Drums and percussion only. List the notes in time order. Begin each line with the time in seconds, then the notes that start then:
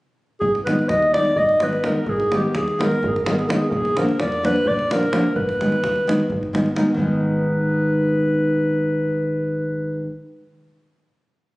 0.42 davul low
0.55 davul high
0.67 davul high
0.79 davul high
0.89 davul high
1.02 davul high
1.14 davul high
1.25 davul high
1.36 davul low
1.49 davul high
1.60 davul high
1.73 davul high
1.84 davul high
2.06 davul low
2.20 davul high
2.32 davul high
2.55 davul high
2.68 davul high
2.81 davul high
2.91 davul high
3.04 davul low
3.16 davul high
3.26 davul high
3.39 davul high
3.50 davul high
3.71 davul low
3.85 davul high
3.97 davul high
4.09 davul high
4.20 davul high
4.32 davul high
4.45 davul high
4.56 davul high
4.66 davul low
4.79 davul high
4.91 davul high
5.03 davul high
5.13 davul high
5.36 davul low
5.49 davul high
5.61 davul high
5.72 davul high
5.84 davul high
5.96 davul high
6.09 davul high
6.20 davul high
6.32 davul low
6.43 davul high
6.55 davul high
6.66 davul high
6.76 davul high
6.87 davul high
6.98 davul low